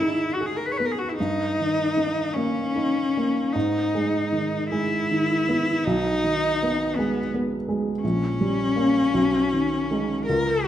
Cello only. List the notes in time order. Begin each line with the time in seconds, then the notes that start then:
Already playing: E4
0.34 F#4
0.46 G#4
0.56 A#4
0.66 B4
0.71 C#5
0.77 B4
0.85 A#4
0.92 G#4
0.99 F#4
1.09 E4
1.16 D#4
2.33 C#4
3.52 D#4
4.70 E4
5.84 D#4
6.95 B3
8.02 C#4
10.25 A#4
10.65 F#4